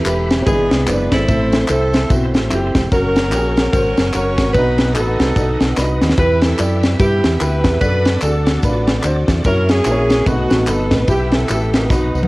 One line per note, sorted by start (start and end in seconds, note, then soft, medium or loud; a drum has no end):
0.00 0.27 E3 medium
0.00 0.43 E4 medium
0.00 0.44 G4 medium
0.00 0.46 G4 medium
0.00 0.31 A4 medium
0.00 0.46 B4 medium
0.00 2.88 E5 medium
0.00 1.27 B5 medium
0.05 0.40 E1 medium
0.05 0.38 E4 medium
0.05 0.38 G4 medium
0.05 0.38 B4 medium
0.05 clap loud
0.05 ride medium
0.05 tambourine loud
0.31 snare loud
0.31 ride medium
0.31 tambourine medium
0.46 0.68 G#1 loud
0.46 1.08 G#2 medium
0.46 0.53 G3 medium
0.46 0.79 B3 medium
0.46 1.25 B3 medium
0.46 0.79 D4 medium
0.46 1.25 D4 medium
0.46 0.79 E4 medium
0.46 0.85 G#4 loud
0.46 1.28 G#4 medium
0.46 0.79 B4 medium
0.46 1.28 D5 medium
0.46 kick loud
0.46 ride medium
0.46 tambourine medium
0.51 0.81 G#3 medium
0.71 0.85 C2 medium
0.71 snare loud
0.71 ride soft
0.71 tambourine medium
0.87 1.08 F#1 loud
0.87 1.19 G#3 medium
0.87 1.19 B3 medium
0.87 1.19 D4 medium
0.87 1.19 E4 medium
0.87 1.11 B4 loud
0.87 0.93 C5 medium
0.87 clap loud
0.87 ride medium
0.87 tambourine loud
0.92 1.22 D5 medium
1.12 1.26 G#1 loud
1.12 1.70 E4 medium
1.12 1.69 A4 medium
1.12 1.69 C5 loud
1.12 kick medium
1.12 snare loud
1.12 ride medium
1.12 tambourine medium
1.28 1.63 A1 loud
1.28 1.90 A2 medium
1.28 1.60 C4 medium
1.28 1.60 E4 medium
1.28 1.60 A4 medium
1.28 2.90 A4 medium
1.28 2.90 C5 medium
1.28 2.90 C6 medium
1.28 kick loud
1.28 ride medium
1.28 tambourine medium
1.52 snare loud
1.52 ride medium
1.52 tambourine medium
1.68 2.04 C2 loud
1.68 2.01 C4 medium
1.68 2.48 C4 medium
1.68 2.01 E4 medium
1.68 2.48 E4 medium
1.68 2.10 A4 medium
1.68 2.01 C5 medium
1.68 clap loud
1.68 ride medium
1.68 tambourine medium
1.94 snare loud
1.94 ride medium
1.94 tambourine medium
2.10 2.35 B1 loud
2.10 2.16 B3 medium
2.10 2.42 E4 medium
2.10 2.42 F#4 medium
2.10 kick loud
2.10 ride medium
2.10 tambourine medium
2.15 2.44 C4 medium
2.34 2.49 A1 loud
2.34 snare loud
2.34 ride medium
2.34 tambourine medium
2.50 2.72 F#1 medium
2.50 2.82 C4 medium
2.50 2.82 E4 medium
2.50 2.57 F#4 medium
2.50 clap loud
2.50 ride medium
2.50 tambourine medium
2.55 2.85 G4 loud
2.75 2.89 E1 loud
2.75 kick medium
2.75 snare loud
2.75 ride medium
2.75 tambourine medium
2.92 3.33 F#1 loud
2.92 3.23 C#4 medium
2.92 3.70 C#4 medium
2.92 3.23 F#4 medium
2.92 3.70 F#4 medium
2.92 3.24 A#4 medium
2.92 4.54 A#4 medium
2.92 3.70 A#4 loud
2.92 4.53 C#5 medium
2.92 6.15 F#5 medium
2.92 4.54 C#6 medium
2.92 kick loud
2.92 ride medium
2.92 tambourine medium
3.16 snare loud
3.16 ride medium
3.16 tambourine medium
3.31 3.67 A#1 medium
3.31 3.64 C#4 medium
3.31 3.64 F#4 medium
3.31 3.38 G4 medium
3.31 clap medium
3.31 ride medium
3.31 tambourine loud
3.37 3.66 G#4 medium
3.57 snare loud
3.57 ride medium
3.57 tambourine medium
3.73 3.94 G#1 loud
3.73 4.05 C#4 medium
3.73 4.52 C#4 medium
3.73 4.05 F#4 medium
3.73 4.13 F#4 medium
3.73 4.11 A#4 loud
3.73 4.05 C5 medium
3.73 kick loud
3.73 ride medium
3.73 tambourine medium
3.97 4.12 F#1 medium
3.97 snare loud
3.97 ride soft
3.97 tambourine medium
4.12 4.38 F#1 loud
4.12 4.45 C#4 medium
4.12 4.46 F#4 medium
4.12 4.52 F#4 medium
4.12 4.46 A#4 medium
4.12 4.52 A#4 medium
4.12 4.54 C#5 loud
4.12 clap medium
4.12 ride medium
4.12 tambourine medium
4.38 4.52 G#1 loud
4.38 kick loud
4.38 snare loud
4.38 ride medium
4.38 tambourine medium
4.53 4.96 B1 loud
4.53 5.16 B2 medium
4.53 4.60 D4 medium
4.53 4.95 D#4 medium
4.53 4.86 F#4 medium
4.53 4.95 F#4 medium
4.53 4.92 B4 loud
4.53 4.86 B4 medium
4.53 7.78 B4 medium
4.53 6.17 D#5 medium
4.53 6.17 D#6 medium
4.53 kick loud
4.53 ride medium
4.53 tambourine medium
4.58 4.88 D#4 medium
4.78 snare loud
4.78 ride medium
4.78 tambourine medium
4.94 5.16 A1 loud
4.94 5.27 D#4 medium
4.94 5.74 D#4 medium
4.94 5.27 F#4 medium
4.94 5.74 F#4 medium
4.94 5.77 A4 medium
4.94 5.01 A4 medium
4.94 clap loud
4.94 ride medium
4.94 tambourine loud
5.00 5.30 B4 medium
5.20 5.34 C2 loud
5.20 snare loud
5.20 ride medium
5.20 tambourine medium
5.36 5.57 B1 medium
5.36 5.42 D4 medium
5.36 5.68 F#4 medium
5.36 5.68 A4 medium
5.36 kick loud
5.36 ride medium
5.36 tambourine medium
5.41 5.70 D#4 medium
5.60 5.75 B1 medium
5.60 snare loud
5.60 ride soft
5.60 tambourine medium
5.77 5.98 C2 medium
5.77 5.83 D4 medium
5.77 6.09 F#4 medium
5.77 6.09 B4 loud
5.77 snare medium
5.77 clap loud
5.77 tambourine loud
5.81 6.11 D#4 medium
6.02 6.16 D#2 loud
6.02 snare loud
6.02 tambourine medium
6.10 snare loud
6.18 6.53 E2 loud
6.18 6.79 E3 medium
6.18 6.50 E4 medium
6.18 6.42 E4 medium
6.18 6.50 G4 medium
6.18 6.96 G4 medium
6.18 6.50 B4 medium
6.18 6.41 B4 loud
6.18 7.80 E5 medium
6.18 7.80 G5 medium
6.18 7.80 E6 medium
6.18 kick loud
6.18 ride medium
6.18 tambourine medium
6.41 7.00 E4 medium
6.41 6.84 A4 loud
6.41 snare loud
6.41 ride medium
6.41 tambourine medium
6.58 6.94 F#2 loud
6.58 6.90 E4 medium
6.58 6.91 G4 medium
6.58 6.91 D5 medium
6.58 clap medium
6.58 ride medium
6.58 tambourine loud
6.83 snare loud
6.83 ride medium
6.83 tambourine medium
6.99 7.20 G2 loud
6.99 7.78 B3 medium
6.99 7.31 E4 medium
6.99 7.39 E4 medium
6.99 7.31 G4 medium
6.99 7.38 G4 loud
6.99 7.32 B4 medium
6.99 kick loud
6.99 ride medium
6.99 tambourine medium
7.24 7.38 E2 medium
7.24 snare loud
7.24 ride soft
7.24 tambourine medium
7.40 7.64 D2 medium
7.40 7.72 E4 medium
7.40 7.79 E4 medium
7.40 7.79 G4 medium
7.40 7.73 G4 medium
7.40 7.80 B4 loud
7.40 7.73 B4 medium
7.40 clap loud
7.40 ride medium
7.40 tambourine loud
7.64 7.79 E2 loud
7.64 kick loud
7.64 snare loud
7.64 ride medium
7.64 tambourine medium
7.81 8.16 F#2 loud
7.81 8.13 D4 medium
7.81 8.22 D4 medium
7.81 8.22 F#4 medium
7.81 8.13 F#4 medium
7.81 9.43 A4 medium
7.81 8.13 A4 medium
7.81 8.19 B4 loud
7.81 9.44 D5 medium
7.81 11.05 F#5 medium
7.81 9.44 D6 medium
7.81 kick loud
7.81 ride medium
7.81 tambourine medium
8.05 snare loud
8.05 ride medium
8.05 tambourine medium
8.21 8.57 D2 medium
8.21 8.54 D4 medium
8.21 9.00 D4 medium
8.21 8.54 F#4 medium
8.21 9.01 F#4 medium
8.21 8.28 G#4 medium
8.21 8.61 A4 medium
8.21 clap loud
8.21 ride medium
8.21 tambourine loud
8.28 8.57 A4 medium
8.46 snare loud
8.46 ride medium
8.46 tambourine medium
8.62 8.98 A1 loud
8.62 8.95 D4 medium
8.62 8.70 F4 medium
8.62 8.96 B4 medium
8.62 kick loud
8.62 ride medium
8.62 tambourine medium
8.69 8.98 F#4 medium
8.87 snare loud
8.87 ride medium
8.87 tambourine medium
9.03 9.25 D2 medium
9.03 9.36 D4 medium
9.03 9.36 F#4 medium
9.03 9.36 C5 loud
9.03 clap loud
9.03 ride medium
9.03 tambourine loud
9.28 9.42 E2 loud
9.28 kick loud
9.28 snare loud
9.28 ride medium
9.28 tambourine medium
9.44 9.80 F#2 loud
9.44 9.77 A#3 medium
9.44 9.69 C#4 medium
9.44 9.77 C#4 medium
9.44 9.77 E4 medium
9.44 9.70 E4 medium
9.44 9.77 F#4 medium
9.44 10.26 A#4 medium
9.44 9.69 A#4 loud
9.44 9.78 C#5 medium
9.44 10.26 E5 medium
9.44 10.26 C#6 medium
9.44 kick loud
9.44 ride medium
9.44 tambourine medium
9.69 10.23 C#4 medium
9.69 10.24 E4 medium
9.69 10.28 G#4 loud
9.69 snare loud
9.69 ride medium
9.69 tambourine medium
9.85 10.21 A#1 loud
9.85 10.18 A#3 medium
9.85 10.18 C#4 medium
9.85 10.18 E4 medium
9.85 10.18 F#4 medium
9.85 9.92 C5 medium
9.85 clap loud
9.85 ride medium
9.85 tambourine loud
9.92 10.21 C#5 medium
10.10 snare loud
10.10 ride medium
10.10 tambourine medium
10.26 10.47 B1 loud
10.26 10.89 B2 medium
10.26 10.59 A3 medium
10.26 11.05 A3 medium
10.26 10.59 B3 medium
10.26 10.33 C4 medium
10.26 11.05 D#4 medium
10.26 10.68 F#4 loud
10.26 10.59 F#4 medium
10.26 11.89 B4 medium
10.26 10.59 B4 medium
10.26 11.08 A5 medium
10.26 11.08 D#6 medium
10.26 kick loud
10.26 ride medium
10.26 tambourine medium
10.32 10.61 D#4 medium
10.50 10.65 A1 loud
10.50 snare loud
10.50 ride soft
10.50 tambourine medium
10.67 10.88 G1 loud
10.67 11.00 A3 medium
10.67 11.00 B3 medium
10.67 11.00 D#4 medium
10.67 11.00 F#4 medium
10.67 10.92 A4 loud
10.67 11.00 B4 medium
10.67 clap loud
10.67 ride medium
10.67 tambourine loud
10.91 11.06 A1 loud
10.91 11.09 B4 loud
10.91 kick loud
10.91 snare loud
10.91 ride medium
10.91 tambourine medium
11.08 11.43 B1 loud
11.08 11.70 B2 medium
11.08 11.87 B3 medium
11.08 11.40 E4 medium
11.08 11.87 E4 medium
11.08 11.40 G4 medium
11.08 11.32 G4 medium
11.08 11.41 B4 medium
11.08 11.89 E5 medium
11.08 11.89 G5 medium
11.08 11.89 E6 medium
11.08 kick loud
11.08 ride medium
11.08 tambourine medium
11.32 11.48 A4 loud
11.32 snare loud
11.32 ride medium
11.32 tambourine medium
11.49 11.90 A1 medium
11.49 11.81 E4 medium
11.49 11.55 F#4 medium
11.49 11.81 A4 medium
11.49 11.72 A4 loud
11.49 clap loud
11.49 ride medium
11.49 tambourine loud
11.54 11.84 G4 medium
11.74 12.28 D#4 medium
11.74 12.28 F#4 medium
11.74 12.28 B4 loud
11.74 snare loud
11.74 ride medium
11.74 tambourine medium
11.90 12.11 B1 loud
11.90 12.28 B2 medium
11.90 12.22 D#4 medium
11.90 12.22 F#4 medium
11.90 12.22 B4 medium
11.90 12.28 B4 medium
11.90 12.28 D#5 medium
11.90 12.28 F#5 medium
11.90 12.28 D#6 medium
11.90 kick loud
11.90 snare medium
11.90 tambourine medium
12.15 12.28 C2 medium
12.15 tambourine medium
12.23 high tom medium